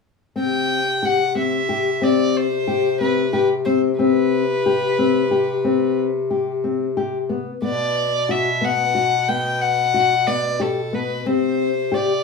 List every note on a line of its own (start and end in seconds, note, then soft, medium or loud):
0.36 7.46 C3 medium
0.36 0.77 C4 medium
0.36 1.06 G5 medium
1.03 1.23 G4 medium
1.03 1.37 F#5 medium
1.35 1.56 C4 medium
1.35 2.05 E5 medium
1.69 1.89 G4 medium
2.02 2.42 C4 medium
2.02 2.38 D5 medium
2.37 3.01 C5 medium
2.67 2.88 G4 medium
3.01 3.21 C4 medium
3.01 3.32 B4 medium
3.33 3.54 G4 medium
3.33 3.48 B4 medium
3.65 3.87 C4 medium
3.65 3.80 C5 medium
3.99 4.40 C4 medium
3.99 5.94 B4 medium
4.66 4.86 G4 medium
4.99 5.19 C4 medium
5.31 5.52 G4 medium
5.64 6.05 C4 medium
6.31 6.51 G4 medium
6.64 6.84 C4 medium
6.97 7.17 G4 medium
7.29 7.50 B3 medium
7.62 11.22 B2 medium
7.62 8.03 B3 medium
7.62 8.32 D5 medium
8.29 8.49 F#4 medium
8.29 8.66 E5 medium
8.61 8.82 B3 medium
8.61 9.30 F#5 medium
8.95 9.15 F#4 medium
9.28 9.69 B3 medium
9.28 9.63 G5 medium
9.61 10.29 F#5 medium
9.94 10.14 F#4 medium
10.27 10.47 B3 medium
10.27 10.63 D5 medium
10.60 10.80 G4 medium
10.60 10.96 A4 medium
10.93 11.13 B3 medium
10.93 11.28 B4 medium
11.26 12.23 C3 medium
11.26 11.66 C4 medium
11.26 11.95 C5 medium
11.92 12.12 G4 medium
11.92 12.23 D5 medium